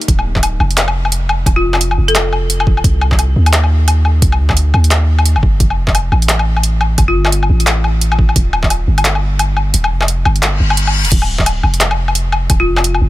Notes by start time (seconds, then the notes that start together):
0.01 closed hi-hat
0.08 D1, kick, closed hi-hat
0.19 low woodblock
0.36 kick, clap
0.43 closed hi-hat, low woodblock
0.60 F1, low woodblock
0.71 closed hi-hat
0.77 clap, closed hi-hat
0.88 low woodblock
1.05 low woodblock
1.12 closed hi-hat
1.29 low woodblock
1.46 D1, kick, closed hi-hat, low woodblock
1.56 F4
1.63 F1
1.74 clap, low woodblock
1.81 closed hi-hat
1.91 low woodblock
1.98 F1
2.08 A4, closed hi-hat
2.15 clap, closed hi-hat, low woodblock
2.33 low woodblock
2.50 closed hi-hat
2.60 low woodblock
2.67 kick
2.77 low woodblock
2.84 C2, kick, closed hi-hat
3.01 low woodblock
3.12 kick, clap
3.19 closed hi-hat, low woodblock
3.36 D#2
3.46 closed hi-hat, low woodblock
3.53 clap, closed hi-hat
3.64 low woodblock
3.88 closed hi-hat, low woodblock
4.05 low woodblock
4.22 C2, kick, closed hi-hat
4.32 low woodblock
4.39 D2
4.50 kick, clap, low woodblock
4.57 closed hi-hat
4.74 D#2, low woodblock
4.84 closed hi-hat
4.91 clap, closed hi-hat, low woodblock
5.19 low woodblock
5.25 closed hi-hat
5.36 G1, low woodblock
5.43 kick
5.60 F1, kick, closed hi-hat
5.70 low woodblock
5.88 kick, clap
5.95 closed hi-hat, low woodblock
6.12 A1, low woodblock
6.22 closed hi-hat
6.29 clap, closed hi-hat
6.39 low woodblock
6.57 low woodblock
6.63 closed hi-hat
6.81 low woodblock
6.98 F1, kick, closed hi-hat, low woodblock
7.08 F4
7.15 G1
7.25 clap, low woodblock
7.32 closed hi-hat
7.43 low woodblock
7.50 A1
7.60 closed hi-hat
7.67 clap, closed hi-hat, low woodblock
7.84 low woodblock
8.01 closed hi-hat
8.12 low woodblock
8.19 kick
8.29 low woodblock
8.36 D#1, kick, closed hi-hat
8.53 low woodblock
8.63 kick, clap
8.70 closed hi-hat, low woodblock
8.88 G1
8.98 closed hi-hat, low woodblock
9.05 clap, closed hi-hat
9.15 low woodblock
9.39 closed hi-hat, low woodblock
9.57 low woodblock
9.74 D#1, closed hi-hat
9.84 low woodblock
9.91 F1
10.01 clap, low woodblock
10.08 closed hi-hat
10.25 G1, low woodblock
10.36 closed hi-hat
10.43 clap, closed hi-hat, reverse cymbal, low woodblock
10.60 G1
10.70 low woodblock
10.77 closed hi-hat
10.87 low woodblock
11.05 D#1, closed hi-hat
11.12 D1, kick, closed hi-hat, crash
11.22 low woodblock
11.39 kick, clap
11.46 closed hi-hat, low woodblock
11.63 F1, low woodblock
11.74 closed hi-hat
11.81 clap, closed hi-hat
11.91 low woodblock
12.08 low woodblock
12.15 closed hi-hat
12.32 low woodblock
12.50 D1, kick, closed hi-hat, low woodblock
12.60 F4
12.67 F1
12.77 clap, low woodblock
12.84 closed hi-hat
12.94 low woodblock
13.01 F1